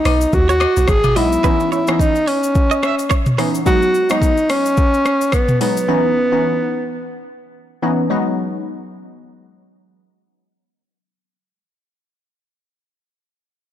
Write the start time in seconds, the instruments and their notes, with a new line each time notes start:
Already playing: tenor saxophone D#4
0.05 log drum bass B1, clean electric guitar B4, cross-stick, open hi-hat, high agogo, shaker
0.21 shaker
0.33 log drum bass D#2, tenor saxophone F#4, kick, shaker
0.49 tenor saxophone F#4, clean electric guitar C#5, shaker
0.60 clean electric guitar D#5, cross-stick, high agogo, shaker
0.77 log drum bass B1, shaker
0.88 log drum bass G#1, tenor saxophone G#4, kick, cross-stick, shaker
1.04 mid tom, high agogo, shaker
1.16 log drum bass B1, synth pluck F#3 G#3 B3 D#4, tenor saxophone E4, clean electric guitar D#5, open hi-hat, shaker
1.33 shaker
1.44 synth pluck E3 B3 C#4 D#4, clean electric guitar B4, kick, shaker
1.60 shaker
1.72 tenor saxophone E4, clean electric guitar C#5, shaker
1.87 synth pluck E3 B3 C#4 D#4, cross-stick, shaker
1.99 tenor saxophone D#4, kick, shaker
2.15 shaker
2.27 tenor saxophone C#4, clean electric guitar C#5, open hi-hat, shaker
2.44 shaker
2.55 kick, shaker
2.71 clean electric guitar D#5, shaker
2.83 clean electric guitar E5, cross-stick, shaker
2.99 shaker
3.10 clean electric guitar C#5, kick, cross-stick, shaker
3.26 mid tom, shaker
3.38 synth pluck E3 B3 C#4 D#4, clean electric guitar B4, cross-stick, open hi-hat, shaker
3.55 shaker
3.66 synth pluck F#3 G#3 B3 D#4, tenor saxophone F#4, kick, shaker
3.82 shaker
3.94 shaker
4.10 synth pluck F#3 G#3 B3 D#4, tenor saxophone D#4, cross-stick, shaker
4.22 kick, shaker
4.37 shaker
4.50 tenor saxophone C#4, cross-stick, open hi-hat, shaker
4.66 shaker
4.77 kick, shaker
4.94 shaker
5.05 cross-stick, shaker
5.21 shaker
5.32 tenor saxophone B3, kick, cross-stick, shaker
5.48 mid tom, shaker
5.60 synth pluck F#3 G#3 B3 D#4, tenor saxophone B3, open hi-hat, shaker
5.77 shaker
5.88 synth pluck E3 B3 C#4 D#4
6.32 synth pluck E3 B3 C#4 D#4
7.82 synth pluck E3 B3 C#4 D#4
8.10 synth pluck F#3 G#3 B3 D#4